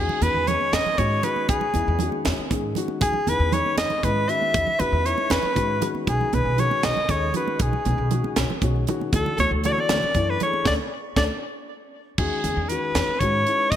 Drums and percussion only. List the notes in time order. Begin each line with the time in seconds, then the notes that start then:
0.09 low conga
0.22 closed hi-hat, high conga
0.35 low conga
0.47 closed hi-hat, low conga
0.61 high conga, low conga
0.73 snare, closed hi-hat, muted conga
0.86 low conga
0.98 kick, closed hi-hat, high conga, low conga
1.11 low conga
1.23 closed hi-hat, low conga
1.36 high conga
1.49 kick, closed hi-hat, muted conga
1.61 low conga
1.74 closed hi-hat, high conga
1.86 low conga
1.99 closed hi-hat, low conga
2.12 high conga, low conga
2.25 snare, closed hi-hat, muted conga
2.51 kick, closed hi-hat, high conga, low conga
2.63 low conga
2.75 closed hi-hat, low conga
2.88 high conga
3.01 kick, closed hi-hat, muted conga
3.13 low conga
3.27 closed hi-hat, high conga
3.40 low conga
3.52 closed hi-hat, low conga
3.66 high conga, low conga
3.78 snare, closed hi-hat, muted conga
3.90 low conga
4.03 kick, closed hi-hat, high conga, low conga
4.16 low conga
4.29 closed hi-hat
4.42 high conga
4.54 kick, closed hi-hat, muted conga, low conga
4.67 low conga
4.80 closed hi-hat, high conga
5.06 closed hi-hat
5.18 high conga
5.30 snare, closed hi-hat, muted conga, low conga
5.43 low conga
5.56 kick, closed hi-hat, high conga, low conga
5.82 closed hi-hat, low conga
5.95 high conga
6.07 kick, closed hi-hat, muted conga
6.21 low conga
6.33 closed hi-hat, high conga
6.46 low conga
6.58 closed hi-hat, low conga
6.71 high conga, low conga
6.83 snare, closed hi-hat, muted conga
6.96 low conga
7.09 kick, closed hi-hat, high conga, low conga
7.22 low conga
7.34 closed hi-hat, low conga
7.48 high conga
7.59 kick, closed hi-hat, muted conga
7.73 low conga
7.85 closed hi-hat, high conga
7.99 low conga
8.11 closed hi-hat, low conga
8.24 high conga, low conga
8.36 snare, closed hi-hat, muted conga
8.50 low conga
8.62 kick, closed hi-hat, high conga, low conga
8.76 low conga
8.87 closed hi-hat, low conga
9.01 high conga
9.13 kick, closed hi-hat, muted conga
9.26 low conga
9.38 closed hi-hat, high conga
9.52 low conga
9.64 closed hi-hat, low conga
9.78 high conga, low conga
9.89 snare, closed hi-hat, muted conga
10.03 low conga
10.14 kick, closed hi-hat, high conga, low conga
10.28 low conga
10.40 closed hi-hat, low conga
10.53 high conga
10.65 kick, snare, muted conga
11.16 kick, snare, muted conga
12.18 kick, crash
12.44 closed hi-hat
12.69 closed hi-hat
12.95 snare, closed hi-hat
13.21 kick, closed hi-hat
13.47 closed hi-hat
13.72 kick, closed hi-hat